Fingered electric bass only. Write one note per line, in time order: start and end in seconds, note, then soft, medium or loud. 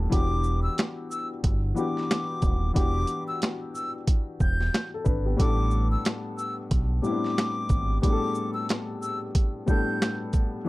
0.12 0.68 E1 loud
1.44 1.72 G1 loud
2.43 2.70 D#1 medium
2.76 3.04 E1 loud
4.41 4.68 E1 medium
5.06 5.34 G#1 loud
5.40 5.95 A1 loud
6.71 6.99 B1 loud
7.70 7.98 G#1 medium